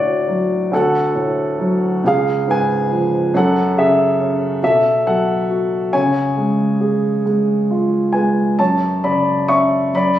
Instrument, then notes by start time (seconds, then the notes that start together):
grand piano
Already playing: D2 A2 F#4 C#5 D5
0.28 F#3
0.71 D2 A4 F#5
1.15 A2
1.59 F#3
2.04 C#2 G#4 F5
2.47 G#2 B4 G#5
2.91 F3
3.34 F#2 A4 F#5
3.77 C#3 G#4 E5
4.20 C#4
4.63 B2 A4 E5
5.06 F#3 A4 F#5
5.50 F#4
5.93 C#3 C#5 G#5
6.37 G#3
6.80 G#4
7.25 G#3
7.71 F4
8.13 G#3 B4 G#5
8.59 F#2 C#5 A5
9.04 C#3 D5 B5
9.48 C#4 E5 C#6
9.93 F#2 D5 B5